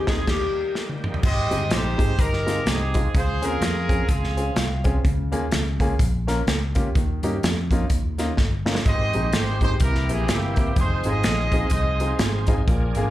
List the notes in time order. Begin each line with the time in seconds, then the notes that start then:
Already playing: D#3 G#3 C4 G#4
0.07 D#2 G#3 C4 D#4 G#4, kick, snare
0.27 D#2 D#3 G3 A#3 F4 G4, kick, snare, crash
0.33 G4
0.75 snare
0.89 high tom
1.04 mid tom
1.14 floor tom
1.23 G#1 G#2 G4 C5, kick, crash
1.27 D#5
1.50 G1 G#3 C4 D#4 G4, closed hi-hat
1.70 A#1 D#4 G4 C5, snare, closed hi-hat
1.98 G#1 G#3 C4 D#4 G#4, kick, closed hi-hat
2.18 G1 D#4 G4 A#4, kick, closed hi-hat
2.33 snare
2.46 G#3 C4 D#4 F4, snare, closed hi-hat
2.66 C2 C4 D#4 G#4, snare, closed hi-hat
2.94 G#3 C4 D#4 F4, kick, closed hi-hat
3.14 C#2 C#3 F4 G#4 C5, kick, closed hi-hat
3.41 D#2 C4 C#4 F4 G#4 A#4, closed hi-hat
3.61 F2, snare, closed hi-hat
3.89 C4 C#4 F4 G#4, kick, closed hi-hat
4.09 C#2 C4 F4 G#4, kick, closed hi-hat
4.24 snare
4.37 C4 C#4 F4 G#4, closed hi-hat
4.56 C2, snare, closed hi-hat
4.84 C4 C#4 F4 G#4, kick, closed hi-hat
5.03 C#2 C#3, kick, closed hi-hat
5.32 D#2 A#3 C#4 F4 G#4, closed hi-hat
5.51 C#2, snare, closed hi-hat
5.80 A#3 C#4 F4 G#4, kick, closed hi-hat
5.99 A#1, kick, closed hi-hat
6.27 A#3 C#4 F4 A#4, snare, closed hi-hat
6.47 C#2, snare, closed hi-hat
6.75 A#3 C#4 F4 G4, kick, closed hi-hat
6.95 D#2 D#3, kick, closed hi-hat
7.22 G2 A#3 C#4 D#4 G4, closed hi-hat
7.43 F2, snare, closed hi-hat
7.71 A#3 C#4 D#4 F4, kick, closed hi-hat
7.90 D#2, kick, closed hi-hat
8.18 A#3 C#4 D#4 F4, snare, closed hi-hat
8.37 G1, kick, snare
8.66 A#3 C#4 D#4 F4, snare
8.75 snare
8.85 G#1 G#2 D#3 G#3 C4 F#4 G4 C5 D#5, kick, closed hi-hat
8.92 G4
9.13 A#1 G#3 C4 D#4 G4, closed hi-hat
9.33 G#1 C5, snare, closed hi-hat
9.61 G#3 C4 D#4 G4 C5, kick, closed hi-hat
9.80 C2 C3 E3 A#3 C4 E4 F4 G4 A#4, kick, closed hi-hat
9.88 G4
9.95 snare
10.09 A#1 A#3 C4 E4 G4 G#4, closed hi-hat
10.28 G1 A#3 E4 G4, snare, closed hi-hat
10.56 A#3 C4 E4 G4, kick, closed hi-hat
10.76 F1 F3 C4 D#4 G#4 C5, kick, closed hi-hat
11.04 G#1 C4 D#4 F4 G#4 C5, closed hi-hat
11.08 D#5
11.23 A#1, snare, closed hi-hat
11.52 C4 D#4 F4 G#4, kick, closed hi-hat
11.70 C2 G#4 C5 D#5, kick, closed hi-hat
12.00 C4 D#4 F4 G#4, closed hi-hat
12.19 G#1, snare, closed hi-hat
12.47 C4 D#4 F4 G#4, kick, closed hi-hat
12.68 A#1 A#2 F3 A#3 D4 G#4, kick, closed hi-hat
12.95 G#1 A#3 D4 F4 G#4, closed hi-hat